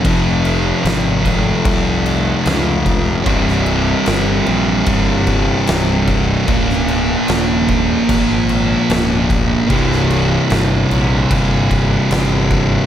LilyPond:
<<
  \new Staff \with { instrumentName = "Distorted electric guitar" } { \clef bass \time 4/4 \key bes \dorian \tempo 4 = 75 <f, c f>1 | <c, g, c>1 | <bes, f bes>1 | <c, g, c>1 | }
  \new Staff \with { instrumentName = "Fingered electric bass" } { \clef bass \time 4/4 \key bes \dorian f,,4 aes,,4 c,4 des,4 | c,,4 g,,8 bes,,8 g,,4 c,,4 | des,,4 ees,,4 aes,,4 des,,4 | c,,4 g,,8 bes,,8 g,,4 g,,4 | }
  \new DrumStaff \with { instrumentName = "Drums" } \drummode { \time 4/4 <cymc bd>8 cymc8 <cymc sn>8 <cymc bd>8 <cymc bd>8 cymc8 <cymc sn>8 <cymc bd>8 | <cymc bd>16 sn16 cymc8 <cymc sn>8 cymc8 <cymc bd>8 <cymc bd>8 <cymc sn>8 <cymc bd>8 | <cymc bd>16 sn16 cymc8 <cymc sn>8 <cymc bd>8 <cymc bd>8 cymc8 <cymc sn>8 <cymc bd>8 | <cymc bd>16 sn16 cymc8 <cymc sn>8 cymc8 <cymc bd>8 <cymc bd>8 <cymc sn>8 <cymc bd>8 | }
>>